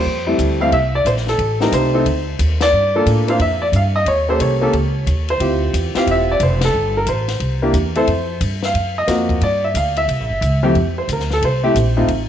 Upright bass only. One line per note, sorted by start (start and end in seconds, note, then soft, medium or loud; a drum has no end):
0.05 0.38 F2 medium
0.39 0.71 D2 medium
0.72 1.05 C2 medium
1.05 1.38 A#1 medium
1.38 1.71 A1 medium
1.72 2.05 C2 medium
2.06 2.38 D2 medium
2.39 2.72 D#2 medium
2.72 3.05 G2 medium
3.06 3.39 A2 medium
3.39 3.72 F2 medium
3.72 4.05 G2 medium
4.06 4.39 D#2 medium
4.39 4.72 C2 medium
4.73 5.05 C#2 medium
5.06 5.39 D#2 medium
5.40 5.72 D2 medium
5.74 5.94 E2 medium
5.95 muted upright bass stroke soft
6.07 6.39 E1 medium
6.40 6.73 F1 medium
6.74 7.06 G1 medium
7.06 7.39 A1 medium
7.40 7.73 C2 medium
7.73 8.06 E2 loud
8.07 8.40 F2 medium
8.41 8.73 G2 medium
8.74 9.07 F#2 medium
9.08 9.40 F2 medium
9.41 9.73 G2 medium
9.74 10.07 D2 medium
10.08 10.20 C2 medium
10.20 10.30 A#1 medium
10.30 10.41 G1 medium
10.41 10.74 C#2 medium
10.75 11.07 F2 medium
11.08 11.40 D2 medium
11.42 11.74 C2 medium
11.75 12.07 A#1 medium
12.08 12.29 A1 medium